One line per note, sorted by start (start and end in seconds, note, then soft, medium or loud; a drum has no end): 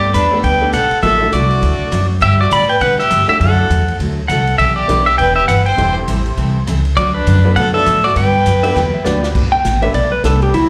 0.00 0.13 G2 medium
0.00 0.11 A3 medium
0.00 0.11 B3 medium
0.00 0.11 D4 medium
0.00 0.12 G4 medium
0.00 0.12 A4 medium
0.00 0.15 D5 medium
0.14 0.43 E2 medium
0.14 0.25 G3 medium
0.14 0.25 B3 medium
0.14 0.42 D4 medium
0.14 0.25 D4 medium
0.14 0.25 A4 medium
0.14 0.45 B4 medium
0.14 hi-hat pedal medium
0.14 ride medium
0.31 0.42 A3 medium
0.31 0.42 B3 medium
0.31 0.43 D4 medium
0.31 0.43 G4 medium
0.31 0.43 A4 medium
0.43 0.72 D2 medium
0.43 0.63 G3 medium
0.43 0.63 B3 medium
0.43 0.63 D4 medium
0.43 0.64 A4 medium
0.43 0.72 B4 medium
0.43 0.73 G5 medium
0.43 kick soft
0.43 ride medium
0.61 0.72 A3 medium
0.61 0.72 B3 medium
0.61 0.73 D4 medium
0.61 0.73 G4 medium
0.61 0.73 A4 medium
0.73 0.90 B1 medium
0.73 0.84 G3 medium
0.73 0.84 B3 medium
0.73 0.84 D4 medium
0.73 1.01 A4 medium
0.73 0.84 A4 medium
0.73 1.02 F#5 loud
0.73 cross-stick medium
0.73 hi-hat pedal medium
0.73 ride medium
0.91 muted upright bass stroke soft
0.91 ride soft
1.02 1.32 A1 medium
1.02 1.22 D3 medium
1.02 1.22 F#3 medium
1.02 1.22 A3 medium
1.02 1.19 A#3 medium
1.02 1.19 D#4 medium
1.02 1.23 E4 medium
1.02 1.19 F4 medium
1.02 1.23 F#4 medium
1.02 1.19 G4 medium
1.02 1.31 A4 medium
1.02 1.19 A#4 medium
1.02 1.33 E5 loud
1.02 kick soft
1.02 ride medium
1.21 1.85 A3 medium
1.21 1.85 D4 medium
1.21 1.85 E4 medium
1.21 1.85 F#4 medium
1.21 1.86 A4 medium
1.32 1.62 C2 medium
1.32 1.43 D3 medium
1.32 1.43 F#3 medium
1.32 1.44 A3 medium
1.32 1.44 E4 medium
1.32 2.06 F#4 medium
1.32 1.44 F#4 medium
1.32 2.06 D5 loud
1.32 hi-hat pedal medium
1.32 ride medium
1.51 ride soft
1.62 1.79 D2 medium
1.62 1.82 D3 medium
1.62 1.82 F#3 medium
1.62 1.82 A3 medium
1.62 1.82 E4 medium
1.62 1.82 F#4 medium
1.62 kick soft
1.62 ride medium
1.80 muted upright bass stroke soft
1.91 2.21 F#2 loud
1.91 2.03 D3 medium
1.91 2.03 F#3 medium
1.91 2.03 A3 medium
1.91 2.03 E4 medium
1.91 2.03 F#4 medium
1.91 cross-stick medium
1.91 hi-hat pedal medium
1.91 ride medium
2.20 2.50 G2 medium
2.20 2.41 D3 medium
2.20 2.41 G3 medium
2.20 2.41 B3 medium
2.20 2.41 D4 medium
2.20 2.41 G4 medium
2.20 2.38 G4 medium
2.20 2.40 E5 loud
2.20 kick soft
2.20 ride medium
2.40 2.51 F#4 medium
2.40 2.52 D5 medium
2.51 2.80 A2 medium
2.51 2.62 D3 medium
2.51 2.62 G3 medium
2.51 2.62 B3 medium
2.51 2.62 D4 medium
2.51 2.62 G4 medium
2.51 2.68 D5 medium
2.51 2.70 B5 loud
2.51 hi-hat pedal medium
2.51 ride medium
2.69 2.81 B4 medium
2.69 2.80 G5 loud
2.69 ride soft
2.81 3.10 B2 medium
2.81 3.00 D3 medium
2.81 3.01 G3 medium
2.81 3.01 B3 medium
2.81 3.01 D4 medium
2.81 3.01 G4 medium
2.81 3.01 B4 medium
2.81 3.00 F#5 loud
2.81 kick soft
2.81 ride medium
2.99 3.28 G4 medium
2.99 3.28 E5 loud
2.99 snare soft
3.10 3.27 G2 medium
3.10 3.21 D3 medium
3.10 3.22 G3 medium
3.10 3.22 B3 medium
3.10 3.22 D4 medium
3.10 3.22 G4 medium
3.10 cross-stick medium
3.10 hi-hat pedal medium
3.10 ride medium
3.27 3.67 A3 medium
3.27 3.68 D4 medium
3.27 3.68 E4 medium
3.27 3.68 F#4 medium
3.27 3.40 G4 medium
3.27 3.68 A4 medium
3.27 3.40 E5 medium
3.27 muted upright bass stroke soft
3.27 ride soft
3.40 3.69 F#2 medium
3.40 3.60 D3 medium
3.40 3.60 F#3 medium
3.40 3.60 A3 medium
3.40 3.60 E4 medium
3.40 3.61 F#4 medium
3.40 3.96 A4 medium
3.40 3.96 F#5 medium
3.40 kick soft
3.40 ride medium
3.70 3.99 E2 loud
3.70 3.81 D3 medium
3.70 3.81 F#3 medium
3.70 3.82 A3 medium
3.70 3.81 E4 medium
3.70 3.82 F#4 medium
3.70 hi-hat pedal medium
3.70 ride medium
3.88 ride soft
3.99 4.29 D2 medium
3.99 4.19 D3 medium
3.99 4.20 F#3 medium
3.99 4.20 A3 medium
3.99 4.20 E4 medium
3.99 4.20 F#4 medium
3.99 kick soft
3.99 ride medium
4.28 4.58 C2 medium
4.28 4.40 D3 medium
4.28 4.40 F#3 medium
4.28 4.40 A3 medium
4.28 4.40 E4 medium
4.28 4.41 F#4 medium
4.28 4.57 A4 medium
4.28 4.58 F#5 medium
4.28 cross-stick medium
4.28 hi-hat pedal medium
4.28 ride medium
4.47 ride soft
4.58 4.88 B1 medium
4.58 4.79 E3 medium
4.58 4.79 B3 medium
4.58 4.79 D4 medium
4.58 4.75 G4 medium
4.58 4.79 G4 medium
4.58 4.75 E5 medium
4.58 kick soft
4.58 ride medium
4.76 5.04 G4 medium
4.76 5.07 D5 medium
4.88 5.18 B1 medium
4.88 5.00 E3 medium
4.88 5.05 B3 medium
4.88 5.00 B3 medium
4.88 5.05 D4 medium
4.88 5.00 D4 medium
4.88 5.05 E4 medium
4.88 5.05 G4 medium
4.88 5.00 G4 medium
4.88 5.05 B4 medium
4.88 hi-hat pedal medium
4.88 ride medium
5.06 5.20 G4 medium
5.06 5.18 E5 medium
5.06 ride soft
5.18 5.47 E1 medium
5.18 5.38 E3 medium
5.18 5.38 B3 medium
5.18 5.39 D4 medium
5.18 5.39 G4 medium
5.18 5.35 B4 medium
5.18 5.35 G5 loud
5.18 kick soft
5.18 ride medium
5.36 5.49 G4 medium
5.36 5.47 E5 medium
5.48 5.77 G1 medium
5.48 5.60 E3 medium
5.48 5.60 B3 medium
5.48 5.60 D4 medium
5.48 5.60 G4 medium
5.48 5.66 B4 medium
5.48 5.65 F#5 medium
5.48 cross-stick medium
5.48 hi-hat pedal medium
5.48 ride medium
5.66 5.94 C5 medium
5.66 5.94 G5 loud
5.66 ride soft
5.77 6.07 E1 medium
5.77 5.98 E3 medium
5.77 5.98 G3 medium
5.77 6.59 C4 medium
5.77 5.98 C4 medium
5.77 6.60 E4 medium
5.77 5.98 E4 medium
5.77 6.60 G4 medium
5.77 6.60 A4 medium
5.77 5.98 A4 medium
5.77 6.60 C5 medium
5.77 kick soft
5.77 ride medium
6.08 6.37 A1 medium
6.08 6.19 E3 medium
6.08 6.19 G3 medium
6.08 6.19 C4 medium
6.08 6.19 E4 medium
6.08 6.19 A4 medium
6.08 hi-hat pedal medium
6.08 ride medium
6.26 ride soft
6.37 6.66 C2 medium
6.37 6.57 E3 medium
6.37 6.57 G3 medium
6.37 6.58 C4 medium
6.37 6.58 E4 medium
6.37 6.58 A4 medium
6.37 kick soft
6.37 ride medium
6.67 6.96 C#2 medium
6.67 6.78 E3 medium
6.67 6.78 G3 medium
6.67 6.78 C4 medium
6.67 6.79 E4 medium
6.67 6.79 A4 medium
6.67 cross-stick medium
6.67 hi-hat pedal medium
6.67 ride medium
6.85 ride soft
6.97 7.26 D2 medium
6.97 7.17 D3 medium
6.97 7.17 F#3 medium
6.97 7.17 A3 medium
6.97 7.17 D4 medium
6.97 7.16 F#4 medium
6.97 7.17 F#4 medium
6.97 7.17 B4 medium
6.97 7.15 D5 medium
6.97 kick soft
6.97 ride medium
7.14 7.56 D4 medium
7.14 7.56 B4 medium
7.26 7.56 F#2 loud
7.26 7.37 D3 medium
7.26 7.38 F#3 medium
7.26 7.38 A3 medium
7.26 7.38 D4 medium
7.26 7.38 F#4 medium
7.26 7.38 B4 medium
7.26 hi-hat pedal medium
7.26 ride medium
7.45 7.55 B3 medium
7.45 7.56 D4 medium
7.45 7.56 F#4 medium
7.45 7.56 A4 medium
7.45 7.56 B4 medium
7.56 7.85 B2 medium
7.56 7.76 D3 medium
7.56 7.76 F#3 medium
7.56 7.76 A3 medium
7.56 7.77 D4 medium
7.56 7.77 F#4 medium
7.56 7.73 A4 medium
7.56 7.77 B4 medium
7.56 7.73 F#5 medium
7.56 kick soft
7.56 ride medium
7.74 7.85 B3 medium
7.74 7.85 D4 medium
7.74 7.85 F#4 medium
7.74 8.02 A4 medium
7.74 7.85 A4 medium
7.74 7.86 D5 medium
7.74 8.05 E5 medium
7.86 8.15 A2 medium
7.86 7.97 D3 medium
7.86 7.97 F#3 medium
7.86 7.97 A3 medium
7.86 7.97 D4 medium
7.86 7.97 F#4 medium
7.86 7.98 B4 medium
7.86 cross-stick medium
7.86 hi-hat pedal medium
7.86 ride medium
8.04 8.15 F#4 medium
8.04 8.15 D5 loud
8.04 ride soft
8.15 8.45 G2 medium
8.15 8.35 D3 medium
8.15 8.36 F#3 medium
8.15 8.36 B3 medium
8.15 8.36 D4 medium
8.15 8.36 G4 medium
8.15 9.19 B4 medium
8.15 9.20 G5 loud
8.15 kick soft
8.15 ride medium
8.46 8.75 F#2 medium
8.46 8.57 D3 medium
8.46 8.57 F#3 medium
8.46 8.57 B3 medium
8.46 8.57 D4 medium
8.46 8.57 G4 medium
8.46 hi-hat pedal medium
8.46 ride medium
8.63 8.74 B3 medium
8.63 8.74 D4 medium
8.63 8.74 F#4 medium
8.63 8.74 G4 medium
8.63 8.75 B4 medium
8.63 8.75 E5 medium
8.63 ride medium
8.75 9.05 E2 medium
8.75 8.95 D3 medium
8.75 8.95 F#3 medium
8.75 8.95 B3 medium
8.75 8.96 D4 medium
8.75 8.96 G4 medium
8.75 8.93 G5 medium
8.75 snare soft
8.94 9.05 E5 medium
9.05 9.34 D2 medium
9.05 9.16 D3 medium
9.05 9.16 F#3 medium
9.05 9.35 B3 medium
9.05 9.16 B3 medium
9.05 9.35 D4 medium
9.05 9.16 D4 medium
9.05 9.35 F#4 medium
9.05 9.35 G4 medium
9.05 9.17 G4 medium
9.05 9.35 B4 medium
9.05 9.28 D5 medium
9.05 snare medium
9.05 hi-hat pedal medium
9.23 snare medium
9.35 9.64 G1 medium
9.35 9.55 G3 medium
9.35 9.55 B3 medium
9.35 9.55 D4 medium
9.35 9.55 A4 medium
9.35 kick medium
9.35 crash medium
9.52 9.81 G5 loud
9.64 9.94 A1 loud
9.64 9.75 G3 medium
9.64 9.76 B3 medium
9.64 9.76 D4 medium
9.64 9.76 A4 medium
9.64 kick soft
9.64 snare medium
9.64 hi-hat pedal medium
9.64 ride medium
9.82 9.93 B3 medium
9.82 9.93 D4 medium
9.82 9.93 G4 medium
9.82 9.94 A4 medium
9.82 9.94 B4 medium
9.82 9.94 E5 medium
9.82 ride soft
9.94 10.23 B1 medium
9.94 10.14 G3 medium
9.94 10.14 B3 medium
9.94 10.14 D4 medium
9.94 10.15 A4 medium
9.94 10.12 D5 medium
9.94 kick soft
9.94 ride medium
10.12 10.24 B4 medium
10.24 10.53 C2 medium
10.24 10.35 G3 medium
10.24 10.54 B3 medium
10.24 10.35 B3 medium
10.24 10.54 D4 medium
10.24 10.36 D4 medium
10.24 10.54 G4 medium
10.24 10.42 A4 medium
10.24 10.54 A4 medium
10.24 10.36 A4 medium
10.24 10.54 B4 medium
10.24 kick soft
10.24 snare medium
10.24 hi-hat pedal medium
10.24 ride medium
10.42 10.54 G4 medium
10.42 ride soft
10.54 10.69 D2 medium
10.54 10.69 D3 medium
10.54 10.69 F#3 medium
10.54 10.69 A3 medium
10.54 10.69 E4 medium
10.54 10.69 F#4 medium
10.54 kick soft
10.54 ride medium